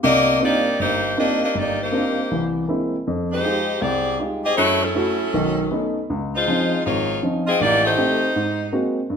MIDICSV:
0, 0, Header, 1, 3, 480
1, 0, Start_track
1, 0, Key_signature, -3, "minor"
1, 0, Tempo, 377834
1, 39, Time_signature, 4, 2, 24, 8
1, 11646, End_track
2, 0, Start_track
2, 0, Title_t, "Saxophone section"
2, 0, Program_c, 0, 65
2, 49, Note_on_c, 0, 67, 100
2, 53, Note_on_c, 0, 74, 91
2, 53, Note_on_c, 0, 75, 114
2, 56, Note_on_c, 0, 58, 100
2, 492, Note_off_c, 0, 67, 0
2, 494, Note_off_c, 0, 75, 0
2, 495, Note_off_c, 0, 74, 0
2, 496, Note_off_c, 0, 58, 0
2, 549, Note_on_c, 0, 67, 82
2, 551, Note_on_c, 0, 58, 87
2, 552, Note_on_c, 0, 63, 85
2, 553, Note_on_c, 0, 74, 97
2, 984, Note_off_c, 0, 67, 0
2, 985, Note_off_c, 0, 58, 0
2, 985, Note_off_c, 0, 63, 0
2, 986, Note_off_c, 0, 74, 0
2, 1022, Note_on_c, 0, 67, 86
2, 1022, Note_on_c, 0, 72, 93
2, 1027, Note_on_c, 0, 63, 85
2, 1028, Note_on_c, 0, 58, 88
2, 1461, Note_off_c, 0, 67, 0
2, 1461, Note_off_c, 0, 72, 0
2, 1463, Note_off_c, 0, 63, 0
2, 1464, Note_off_c, 0, 58, 0
2, 1504, Note_on_c, 0, 62, 82
2, 1504, Note_on_c, 0, 67, 71
2, 1504, Note_on_c, 0, 75, 90
2, 1506, Note_on_c, 0, 58, 78
2, 1789, Note_off_c, 0, 62, 0
2, 1789, Note_off_c, 0, 67, 0
2, 1789, Note_off_c, 0, 75, 0
2, 1791, Note_off_c, 0, 58, 0
2, 1821, Note_on_c, 0, 67, 72
2, 1825, Note_on_c, 0, 58, 75
2, 1825, Note_on_c, 0, 62, 76
2, 1825, Note_on_c, 0, 75, 83
2, 1964, Note_off_c, 0, 67, 0
2, 1967, Note_off_c, 0, 58, 0
2, 1967, Note_off_c, 0, 62, 0
2, 1967, Note_off_c, 0, 75, 0
2, 2006, Note_on_c, 0, 67, 86
2, 2008, Note_on_c, 0, 74, 101
2, 2012, Note_on_c, 0, 58, 83
2, 2012, Note_on_c, 0, 63, 85
2, 2302, Note_off_c, 0, 67, 0
2, 2303, Note_off_c, 0, 74, 0
2, 2305, Note_off_c, 0, 58, 0
2, 2305, Note_off_c, 0, 63, 0
2, 2325, Note_on_c, 0, 72, 85
2, 2328, Note_on_c, 0, 58, 72
2, 2328, Note_on_c, 0, 67, 75
2, 2330, Note_on_c, 0, 63, 70
2, 2908, Note_off_c, 0, 63, 0
2, 3215, Note_off_c, 0, 72, 0
2, 3216, Note_off_c, 0, 58, 0
2, 3216, Note_off_c, 0, 67, 0
2, 4221, Note_on_c, 0, 63, 77
2, 4222, Note_on_c, 0, 56, 83
2, 4225, Note_on_c, 0, 67, 76
2, 4228, Note_on_c, 0, 72, 88
2, 4814, Note_off_c, 0, 56, 0
2, 4814, Note_off_c, 0, 63, 0
2, 4816, Note_off_c, 0, 67, 0
2, 4817, Note_off_c, 0, 72, 0
2, 4848, Note_on_c, 0, 67, 89
2, 4850, Note_on_c, 0, 60, 84
2, 4851, Note_on_c, 0, 74, 96
2, 4852, Note_on_c, 0, 68, 87
2, 5330, Note_off_c, 0, 67, 0
2, 5331, Note_off_c, 0, 60, 0
2, 5331, Note_off_c, 0, 74, 0
2, 5332, Note_off_c, 0, 68, 0
2, 5646, Note_on_c, 0, 60, 80
2, 5649, Note_on_c, 0, 67, 88
2, 5650, Note_on_c, 0, 68, 86
2, 5650, Note_on_c, 0, 75, 100
2, 5799, Note_off_c, 0, 60, 0
2, 5801, Note_off_c, 0, 67, 0
2, 5801, Note_off_c, 0, 68, 0
2, 5801, Note_off_c, 0, 75, 0
2, 5807, Note_on_c, 0, 57, 97
2, 5810, Note_on_c, 0, 73, 104
2, 5813, Note_on_c, 0, 66, 92
2, 5814, Note_on_c, 0, 64, 90
2, 6102, Note_off_c, 0, 57, 0
2, 6104, Note_off_c, 0, 73, 0
2, 6106, Note_off_c, 0, 66, 0
2, 6107, Note_off_c, 0, 64, 0
2, 6137, Note_on_c, 0, 61, 85
2, 6141, Note_on_c, 0, 64, 78
2, 6141, Note_on_c, 0, 69, 88
2, 6144, Note_on_c, 0, 54, 78
2, 6778, Note_off_c, 0, 64, 0
2, 7571, Note_off_c, 0, 61, 0
2, 7573, Note_off_c, 0, 69, 0
2, 7575, Note_off_c, 0, 54, 0
2, 8067, Note_on_c, 0, 65, 85
2, 8075, Note_on_c, 0, 56, 82
2, 8075, Note_on_c, 0, 63, 80
2, 8076, Note_on_c, 0, 72, 89
2, 8655, Note_off_c, 0, 65, 0
2, 8660, Note_off_c, 0, 56, 0
2, 8660, Note_off_c, 0, 63, 0
2, 8660, Note_off_c, 0, 72, 0
2, 8706, Note_on_c, 0, 56, 87
2, 8706, Note_on_c, 0, 65, 93
2, 8711, Note_on_c, 0, 73, 103
2, 8713, Note_on_c, 0, 63, 85
2, 9177, Note_off_c, 0, 56, 0
2, 9177, Note_off_c, 0, 65, 0
2, 9179, Note_off_c, 0, 73, 0
2, 9180, Note_off_c, 0, 63, 0
2, 9489, Note_on_c, 0, 75, 102
2, 9490, Note_on_c, 0, 65, 81
2, 9490, Note_on_c, 0, 68, 86
2, 9494, Note_on_c, 0, 60, 86
2, 9639, Note_off_c, 0, 65, 0
2, 9639, Note_off_c, 0, 68, 0
2, 9639, Note_off_c, 0, 75, 0
2, 9642, Note_off_c, 0, 60, 0
2, 9654, Note_on_c, 0, 58, 94
2, 9657, Note_on_c, 0, 67, 93
2, 9659, Note_on_c, 0, 63, 97
2, 9660, Note_on_c, 0, 74, 106
2, 9958, Note_off_c, 0, 63, 0
2, 9959, Note_off_c, 0, 67, 0
2, 9966, Note_off_c, 0, 58, 0
2, 9969, Note_off_c, 0, 74, 0
2, 9973, Note_on_c, 0, 63, 85
2, 9974, Note_on_c, 0, 67, 76
2, 9979, Note_on_c, 0, 57, 76
2, 9983, Note_on_c, 0, 72, 91
2, 10566, Note_off_c, 0, 67, 0
2, 10568, Note_off_c, 0, 57, 0
2, 11353, Note_off_c, 0, 63, 0
2, 11357, Note_off_c, 0, 72, 0
2, 11646, End_track
3, 0, Start_track
3, 0, Title_t, "Grand piano"
3, 0, Program_c, 1, 0
3, 41, Note_on_c, 1, 48, 61
3, 46, Note_on_c, 1, 36, 59
3, 458, Note_off_c, 1, 48, 0
3, 460, Note_off_c, 1, 36, 0
3, 512, Note_on_c, 1, 58, 49
3, 517, Note_on_c, 1, 62, 44
3, 519, Note_on_c, 1, 60, 44
3, 526, Note_on_c, 1, 63, 45
3, 529, Note_on_c, 1, 65, 52
3, 850, Note_off_c, 1, 58, 0
3, 852, Note_off_c, 1, 62, 0
3, 853, Note_off_c, 1, 60, 0
3, 857, Note_off_c, 1, 63, 0
3, 858, Note_off_c, 1, 65, 0
3, 1006, Note_on_c, 1, 31, 57
3, 1422, Note_off_c, 1, 31, 0
3, 1484, Note_on_c, 1, 58, 43
3, 1490, Note_on_c, 1, 62, 42
3, 1492, Note_on_c, 1, 60, 42
3, 1494, Note_on_c, 1, 63, 43
3, 1496, Note_on_c, 1, 65, 52
3, 1817, Note_off_c, 1, 58, 0
3, 1820, Note_off_c, 1, 62, 0
3, 1821, Note_off_c, 1, 60, 0
3, 1822, Note_off_c, 1, 63, 0
3, 1823, Note_off_c, 1, 65, 0
3, 1965, Note_on_c, 1, 31, 57
3, 2382, Note_off_c, 1, 31, 0
3, 2441, Note_on_c, 1, 58, 48
3, 2446, Note_on_c, 1, 60, 44
3, 2447, Note_on_c, 1, 63, 44
3, 2453, Note_on_c, 1, 62, 46
3, 2456, Note_on_c, 1, 65, 51
3, 2776, Note_off_c, 1, 58, 0
3, 2779, Note_off_c, 1, 60, 0
3, 2780, Note_off_c, 1, 63, 0
3, 2783, Note_off_c, 1, 62, 0
3, 2784, Note_off_c, 1, 65, 0
3, 2937, Note_on_c, 1, 36, 57
3, 2941, Note_on_c, 1, 52, 59
3, 3349, Note_off_c, 1, 36, 0
3, 3352, Note_off_c, 1, 52, 0
3, 3411, Note_on_c, 1, 56, 43
3, 3413, Note_on_c, 1, 60, 41
3, 3414, Note_on_c, 1, 58, 42
3, 3421, Note_on_c, 1, 64, 52
3, 3742, Note_off_c, 1, 56, 0
3, 3743, Note_off_c, 1, 60, 0
3, 3744, Note_off_c, 1, 58, 0
3, 3748, Note_off_c, 1, 64, 0
3, 3903, Note_on_c, 1, 41, 58
3, 4313, Note_off_c, 1, 41, 0
3, 4365, Note_on_c, 1, 56, 52
3, 4372, Note_on_c, 1, 63, 47
3, 4376, Note_on_c, 1, 65, 43
3, 4382, Note_on_c, 1, 67, 53
3, 4700, Note_off_c, 1, 56, 0
3, 4704, Note_off_c, 1, 63, 0
3, 4706, Note_off_c, 1, 65, 0
3, 4709, Note_off_c, 1, 67, 0
3, 4846, Note_on_c, 1, 36, 64
3, 5265, Note_off_c, 1, 36, 0
3, 5330, Note_on_c, 1, 63, 43
3, 5332, Note_on_c, 1, 56, 49
3, 5334, Note_on_c, 1, 65, 44
3, 5337, Note_on_c, 1, 67, 55
3, 5663, Note_off_c, 1, 63, 0
3, 5664, Note_off_c, 1, 56, 0
3, 5665, Note_off_c, 1, 65, 0
3, 5666, Note_off_c, 1, 67, 0
3, 5816, Note_on_c, 1, 42, 61
3, 6230, Note_off_c, 1, 42, 0
3, 6292, Note_on_c, 1, 57, 50
3, 6295, Note_on_c, 1, 64, 43
3, 6301, Note_on_c, 1, 66, 54
3, 6624, Note_off_c, 1, 57, 0
3, 6625, Note_off_c, 1, 64, 0
3, 6629, Note_off_c, 1, 66, 0
3, 6778, Note_on_c, 1, 35, 62
3, 6783, Note_on_c, 1, 51, 59
3, 7190, Note_off_c, 1, 35, 0
3, 7193, Note_off_c, 1, 51, 0
3, 7253, Note_on_c, 1, 59, 47
3, 7256, Note_on_c, 1, 57, 46
3, 7258, Note_on_c, 1, 61, 42
3, 7261, Note_on_c, 1, 63, 56
3, 7584, Note_off_c, 1, 59, 0
3, 7585, Note_off_c, 1, 57, 0
3, 7586, Note_off_c, 1, 61, 0
3, 7588, Note_off_c, 1, 63, 0
3, 7747, Note_on_c, 1, 37, 66
3, 8155, Note_off_c, 1, 37, 0
3, 8230, Note_on_c, 1, 53, 54
3, 8233, Note_on_c, 1, 61, 45
3, 8234, Note_on_c, 1, 60, 48
3, 8242, Note_on_c, 1, 63, 53
3, 8552, Note_off_c, 1, 53, 0
3, 8553, Note_off_c, 1, 61, 0
3, 8554, Note_off_c, 1, 60, 0
3, 8558, Note_off_c, 1, 63, 0
3, 8715, Note_on_c, 1, 32, 61
3, 9118, Note_off_c, 1, 32, 0
3, 9184, Note_on_c, 1, 53, 47
3, 9185, Note_on_c, 1, 60, 43
3, 9197, Note_on_c, 1, 61, 43
3, 9197, Note_on_c, 1, 63, 53
3, 9508, Note_off_c, 1, 53, 0
3, 9508, Note_off_c, 1, 60, 0
3, 9514, Note_off_c, 1, 61, 0
3, 9514, Note_off_c, 1, 63, 0
3, 9663, Note_on_c, 1, 33, 63
3, 10070, Note_off_c, 1, 33, 0
3, 10127, Note_on_c, 1, 57, 50
3, 10136, Note_on_c, 1, 60, 45
3, 10139, Note_on_c, 1, 67, 58
3, 10458, Note_off_c, 1, 57, 0
3, 10462, Note_off_c, 1, 60, 0
3, 10464, Note_off_c, 1, 67, 0
3, 10619, Note_on_c, 1, 44, 61
3, 11027, Note_off_c, 1, 44, 0
3, 11084, Note_on_c, 1, 58, 43
3, 11086, Note_on_c, 1, 56, 50
3, 11089, Note_on_c, 1, 60, 45
3, 11091, Note_on_c, 1, 66, 51
3, 11415, Note_off_c, 1, 58, 0
3, 11416, Note_off_c, 1, 56, 0
3, 11417, Note_off_c, 1, 60, 0
3, 11418, Note_off_c, 1, 66, 0
3, 11558, Note_on_c, 1, 43, 63
3, 11646, Note_off_c, 1, 43, 0
3, 11646, End_track
0, 0, End_of_file